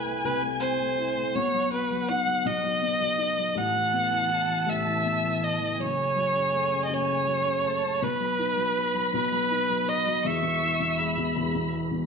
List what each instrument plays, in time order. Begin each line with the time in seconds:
Already playing: felt piano C2 C3 A3 C4 E4, violin B4, violin section G#5
0.06 felt piano A3
0.24 felt piano C2 C3, violin B4
0.42 felt piano A3
0.60 felt piano C4, violin C5
0.79 felt piano A3
0.98 felt piano E4
1.17 felt piano A3
1.35 felt piano B1 B2, violin C#5, violin section F#5
1.53 felt piano F#3
1.71 felt piano B3, violin B4
1.91 felt piano F#3
2.09 felt piano D#4, violin F#5
2.26 felt piano F#3
2.45 felt piano B1 B2, violin D#5
2.64 felt piano F#3
2.82 felt piano B3
3.00 felt piano F#3
3.18 felt piano D#4
3.37 felt piano F#3
3.55 felt piano A1 A2, violin F#5, violin section A5
3.74 felt piano E3
3.93 felt piano B3
4.10 felt piano E3
4.29 felt piano E4
4.48 felt piano E3
4.66 felt piano A1 A2, violin E5
4.86 felt piano E3
5.04 felt piano B3
5.24 felt piano E3
5.42 felt piano E4, violin D#5
5.60 felt piano E3
5.79 felt piano F#1 F#2, violin C#5, violin section G#5
5.97 felt piano C#3
6.15 felt piano F#3
6.34 felt piano C#3
6.52 felt piano A3
6.71 felt piano C#3
6.85 violin D#5
6.89 felt piano F#1 F#2
6.94 violin C#5
7.08 felt piano C#3
7.26 felt piano F#3
7.45 felt piano C#3
7.64 felt piano A3, violin section A5
7.83 felt piano C#3
8.01 felt piano B1 B2, violin B4, violin section B5
8.20 felt piano F#3
8.39 felt piano D#4
8.57 felt piano F#3
8.77 felt piano F#4
8.94 felt piano F#3
9.13 felt piano B1 B2, violin B4
9.32 felt piano F#3
9.51 felt piano D#4
9.69 felt piano F#3
9.87 felt piano F#4, violin D#5
10.06 felt piano F#3
10.24 felt piano E1 E2, violin E5, violin section C#6
10.42 felt piano B2
10.62 felt piano E3
10.80 felt piano B2
10.98 felt piano G#3, violin section B5
11.17 felt piano B2
11.36 felt piano E1 E2
11.55 felt piano B2
11.73 felt piano E3
11.91 felt piano B2